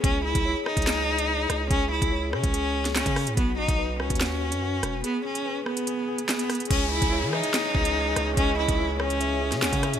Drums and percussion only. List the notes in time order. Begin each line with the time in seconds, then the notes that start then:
0.04 kick, closed hi-hat
0.35 kick, closed hi-hat
0.66 cross-stick
0.77 kick, closed hi-hat
0.82 closed hi-hat
0.87 snare, clap, closed hi-hat
0.92 closed hi-hat
1.18 closed hi-hat
1.50 cross-stick, closed hi-hat
1.71 kick, closed hi-hat
2.02 kick, closed hi-hat
2.33 cross-stick
2.44 kick, closed hi-hat
2.54 closed hi-hat
2.85 snare, closed hi-hat
2.96 snare, clap
3.06 kick, closed hi-hat
3.16 cross-stick, open hi-hat
3.27 closed hi-hat
3.37 kick, closed hi-hat
3.68 kick, closed hi-hat
4.00 cross-stick
4.10 kick, closed hi-hat
4.15 closed hi-hat
4.21 snare, clap, closed hi-hat
4.26 closed hi-hat
4.52 closed hi-hat
4.83 cross-stick, closed hi-hat
5.04 closed hi-hat
5.35 closed hi-hat
5.66 cross-stick
5.77 closed hi-hat
5.87 closed hi-hat
6.18 closed hi-hat
6.29 snare, clap
6.39 closed hi-hat
6.50 cross-stick, closed hi-hat, open hi-hat
6.55 closed hi-hat
6.60 closed hi-hat
6.65 closed hi-hat
6.71 kick, closed hi-hat, crash
7.02 kick, closed hi-hat
7.33 cross-stick
7.43 closed hi-hat
7.54 snare, clap, closed hi-hat
7.75 kick
7.85 closed hi-hat
8.16 cross-stick, closed hi-hat
8.37 kick, closed hi-hat
8.69 kick, closed hi-hat
9.00 cross-stick
9.10 closed hi-hat
9.21 closed hi-hat
9.52 snare, closed hi-hat
9.62 snare, clap
9.73 kick, closed hi-hat
9.83 cross-stick, closed hi-hat
9.93 closed hi-hat